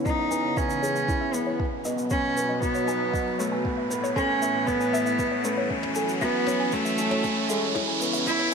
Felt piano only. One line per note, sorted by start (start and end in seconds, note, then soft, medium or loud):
0.00 0.31 B3 medium
0.00 1.09 E4 medium
0.31 0.55 B3 medium
0.57 0.81 B3 medium
0.83 1.07 G#4 medium
1.09 1.33 E4 medium
1.34 1.49 B3 medium
1.85 2.09 B3 medium
2.11 2.35 B3 medium
2.37 2.61 B4 medium
2.62 2.87 F#4 medium
2.88 3.03 B3 medium
3.39 3.63 B3 medium
3.65 3.89 B3 medium
3.90 4.15 B4 medium
4.16 4.41 A4 medium
4.42 4.57 B3 medium
4.93 5.17 B3 medium
5.19 5.43 B3 medium
5.45 5.69 B4 medium
5.70 5.95 C#4 medium
5.96 6.20 A4 medium
6.22 6.46 F#4 medium
6.47 6.62 C#4 medium
6.99 7.23 C#4 medium
7.24 7.48 C#4 medium
7.50 7.74 A4 medium
7.75 8.00 E4 medium
8.01 8.16 B3 medium